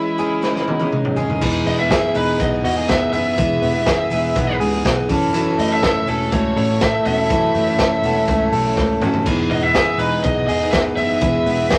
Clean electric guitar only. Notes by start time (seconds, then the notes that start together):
Already playing: E3 G#3 G#4
0.19 G#4
0.43 G#3
0.68 D#4
0.92 G#3
1.16 G#4
1.41 E3
1.66 B3
1.91 G#4
2.15 D#4
2.40 B3
2.64 F#4
2.76 G#4
2.89 B3
3.38 E3
3.62 B3
3.86 G#4
4.36 B3
4.60 G#4
4.85 B3
5.09 E3
5.33 E3
5.58 A3
5.82 A4
6.07 C#4
6.32 A3
6.57 A4
6.81 A3
7.06 B3
7.18 C#4
7.30 E3
7.55 A3
7.80 A4
8.04 B3
8.16 C#4
8.29 A3
8.53 A4
8.77 A3
9.02 C#4
9.26 E3
9.51 B3
9.75 G#4
9.99 D#4
10.24 B3
10.48 G#4
10.73 B3
11.22 E3
11.46 B3
11.71 G#4